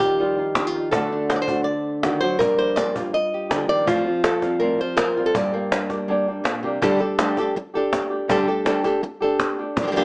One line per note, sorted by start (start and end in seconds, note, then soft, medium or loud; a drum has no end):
0.00 0.91 D#3 medium
0.00 0.94 F3 medium
0.00 0.18 G3 soft
0.00 0.18 D#4 soft
0.00 0.18 F4 soft
0.00 0.56 F4 soft
0.00 0.92 G4 medium
0.00 cajon bass medium
0.18 0.37 D#3 medium
0.18 0.37 G3 medium
0.18 0.37 D#4 medium
0.18 0.36 F4 medium
0.18 cajon slap soft
0.37 0.55 G3 soft
0.37 0.56 D#4 soft
0.37 0.55 F4 soft
0.55 0.67 D4 soft
0.55 muted nylon-string guitar stroke medium
0.55 cajon bass medium
0.55 cajon slap loud
0.67 0.91 F4 soft
0.74 0.93 G3 soft
0.74 0.92 D#4 soft
0.74 0.92 F4 soft
0.91 1.28 D3 medium
0.91 2.39 D3 medium
0.91 1.29 A3 medium
0.91 2.22 A3 soft
0.91 1.29 D4 medium
0.91 1.12 D4 soft
0.91 1.30 F#4 medium
0.91 1.66 A4 medium
0.91 cajon bass loud
1.11 1.50 D4 soft
1.11 cajon slap soft
1.29 1.47 D3 soft
1.29 1.48 A3 soft
1.29 1.48 D4 soft
1.29 1.47 F#4 medium
1.29 1.36 C5 medium
1.29 cajon slap loud
1.36 1.41 D5 medium
1.42 1.64 C5 loud
1.48 1.66 A3 soft
1.48 1.66 D4 soft
1.48 2.39 D4 soft
1.48 1.66 F#4 soft
1.48 cajon bass medium
1.64 2.20 D5 medium
1.64 muted nylon-string guitar stroke medium
2.03 2.22 D#3 medium
2.03 2.22 A3 soft
2.03 2.22 D4 soft
2.03 2.20 F#4 soft
2.03 cajon bass medium
2.03 cajon slap loud
2.21 2.41 F#3 medium
2.21 2.40 A3 soft
2.21 2.40 D4 soft
2.21 2.39 F#4 soft
2.21 2.40 C5 medium
2.39 2.76 G2 medium
2.39 3.88 G2 medium
2.39 2.77 D3 medium
2.39 2.76 F3 medium
2.39 2.77 A#3 medium
2.39 2.77 D4 medium
2.39 2.77 G4 medium
2.39 2.95 A#4 loud
2.39 cajon bass loud
2.59 2.76 C5 medium
2.59 cajon slap soft
2.76 2.95 F3 soft
2.76 2.95 A#3 soft
2.76 2.94 D4 soft
2.76 2.94 G4 soft
2.76 3.13 D5 loud
2.76 cajon slap loud
2.95 3.12 F3 soft
2.95 3.13 A#3 soft
2.95 3.13 D4 soft
2.95 3.86 F4 soft
2.95 3.13 G4 soft
2.95 cajon bass medium
3.13 3.69 D#5 loud
3.13 muted nylon-string guitar stroke medium
3.34 3.90 G4 soft
3.49 3.69 D3 medium
3.49 3.69 F3 soft
3.49 3.68 A#3 soft
3.49 3.68 D4 soft
3.49 3.67 G4 soft
3.49 cajon bass medium
3.49 cajon slap loud
3.68 3.88 D#3 medium
3.68 3.86 F3 soft
3.68 3.87 A#3 soft
3.68 3.87 D4 soft
3.68 3.86 G4 soft
3.68 3.88 D5 loud
3.86 4.05 F2 medium
3.86 4.05 A2 medium
3.86 4.05 F3 medium
3.86 5.35 F3 medium
3.86 4.05 G3 medium
3.86 4.05 C4 medium
3.86 4.61 F4 medium
3.86 4.03 F4 medium
3.86 cajon bass loud
4.05 4.23 F3 soft
4.05 4.23 G3 soft
4.05 4.23 C4 soft
4.05 4.23 F4 soft
4.05 cajon slap soft
4.23 4.59 A4 medium
4.23 muted nylon-string guitar stroke medium
4.23 cajon slap loud
4.42 4.59 F3 soft
4.42 4.60 G3 soft
4.42 4.60 C4 soft
4.42 4.60 F4 soft
4.42 cajon bass medium
4.42 cajon slap soft
4.60 4.78 F2 medium
4.60 4.78 A2 medium
4.60 4.79 F3 medium
4.60 4.79 G3 medium
4.60 4.79 C4 medium
4.60 4.78 F4 medium
4.60 4.79 A#4 medium
4.60 cajon slap soft
4.79 4.97 F3 soft
4.79 4.97 G3 soft
4.79 4.97 C4 soft
4.79 4.97 F4 soft
4.79 5.35 C5 medium
4.97 5.25 A#4 loud
4.97 muted nylon-string guitar stroke medium
4.97 cajon bass medium
4.97 cajon slap loud
5.16 5.35 F3 soft
5.16 5.34 G3 soft
5.16 5.34 C4 soft
5.16 5.34 F4 soft
5.16 5.33 F4 soft
5.26 5.35 A4 loud
5.34 5.52 G2 medium
5.34 6.43 G2 medium
5.34 5.52 D3 medium
5.34 5.53 G3 medium
5.34 5.53 A#3 medium
5.34 5.52 D4 medium
5.34 6.82 G4 medium
5.34 5.51 G4 medium
5.34 cajon bass loud
5.52 5.70 G3 soft
5.52 6.82 A#3 medium
5.52 5.71 A#3 soft
5.52 5.71 D4 soft
5.52 5.70 G4 soft
5.71 6.07 D4 medium
5.71 muted nylon-string guitar stroke medium
5.71 cajon slap loud
5.90 6.08 G3 soft
5.90 6.08 A#3 soft
5.90 6.08 D4 soft
5.90 6.08 G4 soft
5.90 cajon bass medium
5.90 cajon slap soft
6.08 6.26 G2 medium
6.08 6.26 D3 medium
6.08 6.26 G3 medium
6.08 6.27 A#3 medium
6.08 6.82 D4 medium
6.08 6.27 D4 medium
6.08 6.27 G4 medium
6.28 6.44 G3 soft
6.28 6.44 A#3 soft
6.28 6.45 D4 soft
6.28 6.45 G4 soft
6.44 6.63 A#2 medium
6.44 muted nylon-string guitar stroke medium
6.44 cajon slap loud
6.63 6.81 C3 medium
6.63 6.81 G3 soft
6.63 6.82 A#3 soft
6.63 6.82 D4 soft
6.63 6.82 G4 medium
6.82 6.99 D3 medium
6.82 7.00 G3 medium
6.82 7.00 A3 medium
6.82 7.00 D4 medium
6.82 7.00 D4 loud
6.82 7.00 G4 medium
6.82 6.99 G4 medium
6.82 6.99 A4 medium
6.82 cajon bass loud
7.00 7.18 A3 soft
7.00 7.18 D4 soft
7.00 7.19 D4 soft
7.00 7.18 G4 soft
7.00 7.19 G4 soft
7.00 7.18 A4 medium
7.00 cajon slap soft
7.18 7.36 D3 soft
7.18 7.37 G3 medium
7.18 7.37 A3 soft
7.18 7.37 D4 soft
7.18 7.37 D4 medium
7.18 7.36 G4 medium
7.18 7.38 G4 medium
7.18 7.37 A4 medium
7.18 cajon slap loud
7.37 7.55 A3 soft
7.37 7.55 D4 soft
7.37 7.56 D4 soft
7.37 7.55 G4 soft
7.37 7.56 G4 medium
7.37 7.55 A4 medium
7.37 cajon bass medium
7.37 cajon slap soft
7.55 muted nylon-string guitar stroke medium
7.55 cajon slap soft
7.74 8.11 A3 soft
7.74 8.10 D4 soft
7.74 8.30 D4 soft
7.74 8.09 G4 soft
7.74 8.31 G4 medium
7.74 8.29 A4 medium
7.93 cajon bass medium
7.93 cajon slap loud
8.10 8.28 A3 soft
8.10 8.28 D4 soft
8.10 8.28 G4 soft
8.28 8.46 D3 medium
8.28 8.47 D3 medium
8.28 8.47 G3 medium
8.28 8.47 A3 medium
8.28 8.46 D4 medium
8.28 8.48 D4 medium
8.28 8.45 G4 medium
8.28 8.48 G4 medium
8.28 8.47 A4 loud
8.28 cajon bass loud
8.47 8.64 A3 soft
8.47 8.64 D4 soft
8.47 8.65 D4 soft
8.47 8.65 G4 soft
8.47 8.66 G4 medium
8.47 8.66 A4 medium
8.47 cajon slap soft
8.64 8.83 D3 soft
8.64 8.83 G3 medium
8.64 8.83 A3 soft
8.64 8.83 D4 soft
8.64 8.84 D4 medium
8.64 8.84 G4 medium
8.64 8.82 G4 soft
8.64 8.84 A4 medium
8.64 cajon slap loud
8.83 9.01 A3 soft
8.83 9.01 D4 soft
8.83 9.02 D4 soft
8.83 9.01 G4 soft
8.83 9.02 G4 medium
8.83 9.02 A4 medium
8.83 cajon bass medium
8.83 cajon slap soft
9.02 muted nylon-string guitar stroke medium
9.02 cajon slap soft
9.20 9.58 A3 soft
9.20 9.57 D4 soft
9.20 9.82 D4 soft
9.20 9.57 G4 soft
9.20 9.83 G4 medium
9.20 9.76 A4 medium
9.40 cajon bass medium
9.40 cajon slap loud
9.58 9.77 A3 soft
9.58 9.76 D4 soft
9.58 9.76 G4 soft
9.76 10.04 G2 medium
9.76 10.04 D3 medium
9.76 10.04 F3 medium
9.76 10.04 A#3 medium
9.76 10.04 D4 medium
9.76 10.04 G4 medium
9.76 muted nylon-string guitar stroke medium
9.76 cajon bass loud
9.82 9.86 D3 medium
9.82 9.86 F3 medium
9.82 9.87 A#3 medium
9.82 9.87 D4 medium
9.82 9.87 G4 medium
9.87 9.90 D3 medium
9.87 9.91 F3 medium
9.87 9.91 A#3 medium
9.87 9.91 D4 medium
9.87 9.92 G4 medium
9.91 9.95 D3 medium
9.91 9.96 F3 medium
9.91 9.95 A#3 medium
9.91 9.96 D4 medium
9.91 9.96 G4 medium
9.91 cajon slap soft
9.96 10.04 G2 medium
9.96 10.04 D3 medium
9.96 10.04 F3 medium
9.96 10.04 A#3 medium
9.96 10.04 D4 medium
9.96 10.04 G4 medium